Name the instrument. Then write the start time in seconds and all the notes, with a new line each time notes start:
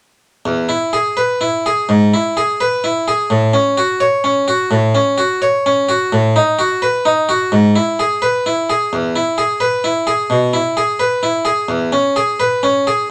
harpsichord
0.46 E2
0.69 E4
0.93 G#4
1.17 B4
1.41 E4
1.66 G#4
1.89 G#2
2.14 E4
2.37 G#4
2.61 B4
2.84 E4
3.08 G#4
3.30 A2
3.53 C#4
3.77 F#4
4.00 C#5
4.24 C#4
4.48 F#4
4.71 A2
4.95 C#4
5.18 F#4
5.42 C#5
5.66 C#4
5.89 F#4
6.12 A2
6.36 D#4
6.59 F#4
6.82 B4
7.05 D#4
7.29 F#4
7.52 G#2
7.76 E4
7.99 G#4
8.22 B4
8.46 E4
8.70 G#4
8.93 E2
9.16 E4
9.38 G#4
9.60 B4
9.84 E4
10.07 G#4
10.30 B2
10.53 E4
10.77 G#4
11.00 B4
11.23 E4
11.45 G#4
11.69 E2
11.92 C#4
12.16 G#4
12.40 B4
12.63 C#4
12.87 G#4